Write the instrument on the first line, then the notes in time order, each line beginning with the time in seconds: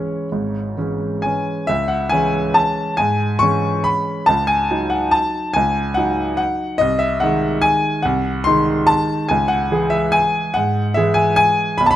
grand piano
Already playing: E3 G#3 C#4 E4 C#5
0.32 G#1 G#2
0.77 E3 G#3 C#4
1.22 E3 G#3 C#4 G#5
1.67 C#2 E5
1.88 F#5
2.09 E3 G#3 C#4 G#5
2.54 A5
2.97 G#2 G#5
3.39 E3 G#3 C#4 C#6
3.84 B5
4.26 C#2 A5
4.47 G#5
4.71 F#3 D#4
4.90 F#5
5.11 A5
5.54 C#2 G#5
5.94 F#3 D#4 F#5
6.37 F#5
6.78 C2 D#5
6.99 E5
7.20 D#3 G#3 D#4 F#5
7.62 G#5
8.02 C2 F#5
8.44 D#3 G#3 D#4 C6
8.87 A5
9.29 C#2 G#5
9.48 F#5
9.71 E3 G#3 G#4
9.90 E5
10.12 G#5
10.54 G#2 F#5
10.94 E3 G#3 G#4 E5
11.14 G#5
11.36 G#5
11.78 B1 B5
11.86 A5
11.91 B5